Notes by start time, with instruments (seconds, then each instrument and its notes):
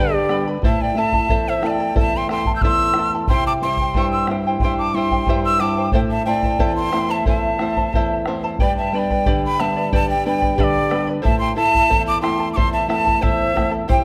Already playing: nylon-string guitar D3 G3 B3 D4, charango G4 G5
0.00 pan flute G4, charango B4 D5 B5, quena D5
0.29 nylon-string guitar G3 B3 D4, charango B4 D5 G5 B5, bombo rim
0.48 charango B4 D5 B5
0.62 nylon-string guitar A2, charango E4 A4 C5 E5 A5, quena A5, bombo low
0.66 pan flute E5
0.82 pan flute D5, quena G5
0.94 nylon-string guitar A3 C4 E4, charango E4 A4 E5 A5, pan flute E5
0.99 quena A5
1.12 charango E4 A4 A5, bombo low
1.28 nylon-string guitar E2, charango E4 A4 C5 E5 A5, bombo low
1.49 pan flute C5, quena E5
1.62 nylon-string guitar A3 C4 E4, charango E4 A4 E5 A5, pan flute D5, bombo rim
1.66 quena G5 A5
1.80 charango E4 A4 A5
1.95 nylon-string guitar E2, charango E4 A4 C5 E5 A5, quena A5, bombo low
2.00 pan flute E5
2.16 pan flute G5, quena C6
2.27 nylon-string guitar A3 C4 E4, charango E4 A4 E5 A5, pan flute G5, quena C6, bombo rim
2.45 charango E4 A4 A5, bombo low
2.56 pan flute E6, quena G6
2.61 nylon-string guitar E2, charango E4 A4 C5 E5 A5, pan flute C6, quena E6, bombo low
2.94 nylon-string guitar A3 C4 E4, bombo rim
2.98 charango E4 A4 E5 A5
3.14 charango E4 A4 A5
3.27 nylon-string guitar C3, charango E4 G4 C5 E5 G5, pan flute G5, quena C6, bombo low
3.46 pan flute A5, quena D6
3.61 nylon-string guitar G3 C4 E4, charango E4 C5 E5 G5, pan flute G5, quena C6
3.77 bombo low
3.81 charango E4 C5 G5
3.94 nylon-string guitar G2, charango E4 G4 C5 E5 G5, bombo low
4.12 pan flute C6, quena E6
4.27 nylon-string guitar G3 C4 E4, charango E4 E5, bombo rim
4.31 charango C5 G5
4.47 charango E4 C5 G5
4.60 nylon-string guitar G2, charango G4, pan flute G5, quena C6, bombo low
4.64 charango E4 C5 E5 G5
4.78 pan flute A5, quena D6
4.94 nylon-string guitar G3 C4 E4, charango E4 C5 E5 G5, pan flute G5, quena C6
5.11 charango E4 C5 G5, bombo low
5.27 nylon-string guitar G2, charango E4 G4 C5 E5 G5, bombo low
5.44 pan flute C6, quena E6
5.60 nylon-string guitar G3 C4 E4, charango E4 C5 E5 G5, pan flute A5, quena D6, bombo rim
5.77 charango E4 C5 G5
5.92 nylon-string guitar A2, charango E4 A4 C5 E5 A5, pan flute C5, quena G5, bombo low
6.10 pan flute E5, quena A5
6.25 nylon-string guitar A3 C4 E4, charango E4 C5 E5 A5, pan flute D5, quena G5
6.42 charango E4 C5 A5, bombo low
6.59 nylon-string guitar E2, charango E4 A4 C5 E5 A5, bombo low
6.76 pan flute G5, quena C6
6.92 nylon-string guitar A3 C4 E4, charango E4 C5 E5 A5, bombo rim
7.09 charango E4 C5 A5, pan flute E5, quena A5
7.26 nylon-string guitar E2, charango E4 A4 C5 E5 A5, pan flute E5, quena A5, bombo low
7.59 nylon-string guitar A3 C4 E4, charango E4 C5 E5 A5, bombo rim
7.76 charango E4 C5 A5, bombo low
7.93 nylon-string guitar E2, charango E4 A4 C5 E5 A5, bombo low
8.26 nylon-string guitar A3 C4 E4, charango E4 C5 E5 A5, bombo rim
8.44 charango E4 C5 A5
8.59 nylon-string guitar G2, charango G4 B4 D5 G5 B5, pan flute D5, quena G5, bombo low
8.77 pan flute E5, quena A5
8.92 nylon-string guitar G3 B3 D4, charango B4 D5 G5 B5, pan flute D5, quena A5
8.99 quena G5
9.10 charango B4 D5 B5, bombo low
9.26 nylon-string guitar D3, charango G4 B4 D5 G5 B5, bombo low
9.45 pan flute G5, quena B5
9.58 nylon-string guitar G3 B3 D4, charango B4 D5 G5 B5, pan flute E5, quena A5, bombo rim
9.76 charango B4 D5 B5
9.92 nylon-string guitar D3, charango G4 B4 D5 G5 B5, pan flute D5, quena A5, bombo low
10.07 pan flute D5, quena G5
10.25 nylon-string guitar G3 B3 D4, charango B4 D5 G5 B5, pan flute D5, quena G5
10.41 charango B4 D5 B5, bombo low
10.57 nylon-string guitar D3, pan flute G4, charango G4 B4 D5 G5 B5, quena E5, bombo low
10.64 quena D5
10.90 nylon-string guitar G3 B3 D4, charango B4 D5 G5 B5, bombo rim
11.07 charango B4 D5 B5
11.22 nylon-string guitar A2, charango E4 A4 C5 E5 A5, pan flute E5, quena A5, bombo low
11.39 pan flute G5, quena C6
11.56 nylon-string guitar A3 C4 E4, charango E4 A4 E5 A5, pan flute E5, quena A5
11.72 charango E4 A4 A5, bombo low
11.90 nylon-string guitar E2, charango E4 A4 C5 E5 A5, bombo low
12.05 pan flute A5, quena D6
12.21 nylon-string guitar A3 C4 E4, charango E4 A4 E5 A5, pan flute G5, quena C6, bombo rim
12.39 charango E4 A4 A5
12.50 pan flute A5 B5, quena D6
12.56 nylon-string guitar E2, charango E4 A4 C5 E5 A5, quena C6, bombo low
12.72 pan flute E5, quena A5
12.88 nylon-string guitar A3 C4 E4, charango E4 A4 E5 A5, pan flute E5, quena A5, bombo rim
13.06 charango E4 A4 A5, bombo low
13.21 nylon-string guitar E2, charango E4 A4 C5 E5 A5, pan flute C5, quena E5, bombo low
13.54 nylon-string guitar A3 C4 E4, charango E4 A4 E5 A5, bombo rim, bombo low
13.71 charango E4 A4 A5
13.88 nylon-string guitar C3, charango E4 G4 C5 E5 G5, pan flute C5, quena G5, bombo low